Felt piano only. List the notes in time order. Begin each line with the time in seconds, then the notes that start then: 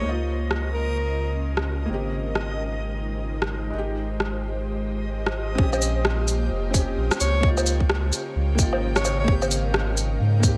0.01 A#3
0.05 D#4 F4
1.86 A#3
1.90 C4 G4
3.70 G#3
3.74 D#4 G4
5.55 C4 C#4
5.63 G4
6.70 C4
6.74 C#4 G4
7.40 A#3 D#4
7.48 F4
8.55 A#3
8.59 D#4 F4
9.24 A#3
9.28 C4 G4
10.40 A#3 C4
10.48 G4